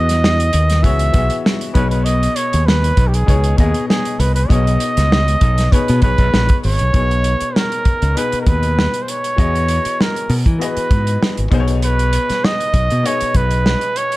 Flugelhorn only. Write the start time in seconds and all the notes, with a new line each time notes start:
Already playing: D#5
0.83 E5
1.74 B4
1.91 B4
2.04 D#5
2.36 C#5
2.66 B4
3.08 G4
3.14 G#4
3.59 G#4
3.88 G#4
4.20 B4
4.35 B4
4.49 D#5
5.72 B4
6.03 B4
6.65 C#5
7.56 A#4
8.17 B4
8.41 A#4
8.47 B4
9.02 C5
9.10 C#5
10.02 A#4
10.63 B4
11.84 B4
12.45 D#5
13.06 C#5
13.36 B4
13.97 C#5